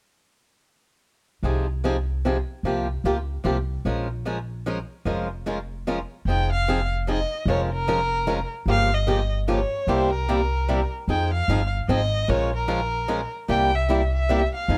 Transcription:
1.43 C2 C3 F3 C4 D#4 G#4
1.84 C3 F3 C4 D#4 G#4
2.25 C3 F3 C4 D#4 G#4
2.63 C2 C3 F3 A#3 F4 G4
3.04 C#2 C3 F3 A#3 F4 G4
3.44 C2 C3 F3 A#3 F4 G4
3.85 A#1 F3 G#3 C#4 F4 A#4
4.25 F3 G#3 C#4 F4 A#4
4.66 F3 G#3 C#4 F4 A#4
5.05 F1 F3 G#3 C#4 F4 A#4
5.46 F3 G#3 C#4 F4 A#4
5.87 F3 G#3 C#4 F4 A#4
6.25 F1 F3 C4 D#4 G5
6.30 G#4
6.53 F5
6.68 F3 C4 D#4 G#4
7.07 F3 C4 D#4 G#4 D#5
7.46 F1 F3 G#3 C#4 F4 A#4 C#5
7.73 A#4
7.88 F3 G#3 C#4 F4 A#4
8.27 F3 G#3 C#4 F4 A#4
8.66 G1 C#3 F3 A#3 F4 G4
8.71 F5
8.95 D#5
9.07 C#3 F3 A#3 F4 G4
9.48 C#3 F3 A#3 F4 G4 C#5
9.87 C2 C3 G3 A#3 E4 G4 C5
10.14 A#4
10.29 C3 G3 A#3 E4 G4
10.68 C3 G3 A#3 E4 G4
11.08 F2 F3 C4 D#4 G#4 G5
11.34 F5
11.48 G1 F3 C4 D#4 G#4
11.88 G#1 F3 C4 D#4 G#4 D#5
12.28 A#1 F3 G#3 C#4 F4 A#4 C#5
12.56 A#4
12.68 F3 G#3 C#4 F4 A#4
13.08 F3 G#3 C#4 F4 A#4
13.48 C2 C3 G3 A#3 E4 G4 G5
13.76 E5
13.89 C3 G3 A#3 E4 G4
14.15 E5
14.29 C3 G3 A#3 E4 G4
14.56 F5
14.68 F2 F3 C4 D#4 G#4

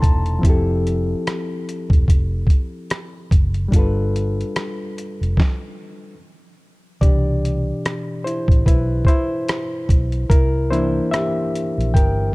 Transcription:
Already playing: C3 A#3 D4 D#4 E4 A4 C5 D5 E5 G5 A5 A#5 C6
0.02 E1 A5, kick, closed hi-hat
0.26 closed hi-hat
0.39 F3 C4
0.43 F1 E4 G4, kick, closed hi-hat
0.49 A4
0.87 closed hi-hat
1.27 cross-stick, closed hi-hat
1.69 closed hi-hat
1.90 E1, kick, closed hi-hat
2.08 F1, kick, closed hi-hat
2.47 kick, closed hi-hat
2.90 cross-stick, closed hi-hat
3.31 F#1, kick, closed hi-hat
3.54 closed hi-hat
3.68 G3 D4, kick
3.73 G1 F4 A4, closed hi-hat
3.79 B4
4.16 closed hi-hat
4.41 closed hi-hat
4.56 cross-stick, closed hi-hat
4.98 closed hi-hat
5.21 F1, closed hi-hat
5.37 kick, snare
7.01 C2 B2 E3 D4 G4 D5, kick, closed hi-hat
7.45 closed hi-hat
7.85 cross-stick, closed hi-hat
8.24 E4 C5, closed hi-hat
8.48 A1, kick, closed hi-hat
8.66 B1 E4 B4, kick, closed hi-hat
9.05 E4 C5, kick, closed hi-hat
9.48 cross-stick, closed hi-hat
9.89 B1, kick, closed hi-hat
10.12 closed hi-hat
10.30 C2 E4 A#4, kick, closed hi-hat
10.71 E3 A#3 D4 E4 C5, closed hi-hat
11.11 G4 E5, cross-stick, closed hi-hat
11.56 closed hi-hat
11.78 A#1, closed hi-hat
11.94 G1 A#4 G5, kick, closed hi-hat

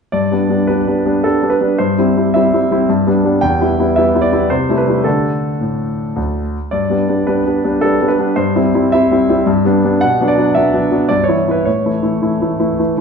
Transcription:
0.12 G2 D5
0.32 G3 B3 D4
0.49 G3 B3 D4
0.67 G3 B3 D4 B4
0.87 G3 B3 D4
1.05 G3 B3 D4
1.24 G3 B3 D4 A4
1.42 G3 B3 D4
1.50 B4
1.61 G3 B3 D4
1.78 G2 C5
1.98 G3 C4 E4
2.17 G3 C4 E4
2.34 G3 C4 E4 E5
2.53 G3 C4 E4
2.71 G3 C4 E4
2.89 G2
3.07 G3 B3 D4
3.25 G3 B3 D4
3.41 E2 G5
3.61 G3 B3 E4
3.79 G3 B3 E4
3.96 G3 B3 E4 E5
4.15 G3 B3 E4
4.22 D5
4.32 G3 B3 E4
4.50 C3 C5
4.69 G3 A3 E4
4.78 B4
4.88 G3 A3 E4
5.04 D3 A3 D4 A4
5.61 A2
6.16 D2
6.71 G2 D5
6.90 G3 B3 D4
7.09 G3 B3 D4
7.27 G3 B3 D4 B4
7.46 G3 B3 D4
7.64 G3 B3 D4
7.81 G3 B3 D4 A4
8.01 G3 B3 D4
8.08 B4
8.18 G3 B3 D4
8.36 G2 C5
8.56 G3 C4 E4
8.74 G3 C4 E4
8.92 G3 C4 E4 E5
9.11 G3 C4 E4
9.29 G3 C4 E4
9.46 G2
9.65 G3 B3 D4
9.85 G3 B3 D4
10.01 B2 F#5
10.21 F#3 B3 D4
10.28 D5
10.38 F#3 B3 D4
10.55 F#3 B3 D4 E5
10.74 F#3 B3 D4
10.92 F#3 B3 D4
11.09 G2 D5
11.24 C#5
11.28 E3 B3 E4
11.48 E3 B3 E4 B4
11.65 A2 C#5
11.85 E3 A3 E4
12.03 E3 A3 E4
12.22 E3 A3 E4
12.41 E3 A3 E4
12.60 E3 A3 E4
12.79 E3 A3 E4
12.97 E3 A3

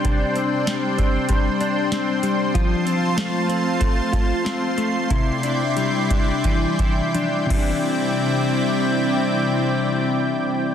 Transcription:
Already playing: G3 C4 D4 C5 G5 C6
0.05 C3 D4, kick, closed hi-hat
0.36 C4, closed hi-hat
0.67 G3, snare, closed hi-hat
0.98 C4, kick, closed hi-hat
1.29 G3, kick, closed hi-hat
1.61 D4, closed hi-hat
1.92 C4, snare, closed hi-hat
2.23 G3, closed hi-hat
2.54 F3 F4 A5 C6, kick, closed hi-hat
2.85 C4, closed hi-hat
3.17 A3, snare, closed hi-hat
3.49 C4, closed hi-hat
3.80 A3, kick, closed hi-hat
4.12 F4, kick, closed hi-hat
4.44 C4, snare, closed hi-hat
4.78 A3, closed hi-hat
5.10 C3 E4 D5 G5, kick, closed hi-hat
5.43 D4, closed hi-hat
5.77 G3, closed hi-hat
6.11 D4, kick, closed hi-hat
6.44 E3, kick, closed hi-hat
6.79 E4, kick, closed hi-hat
7.14 D4, closed hi-hat, high tom
7.46 C3 D5
7.50 C3 E3 G3 C4 E4 G5, kick, crash
7.57 D4 E4

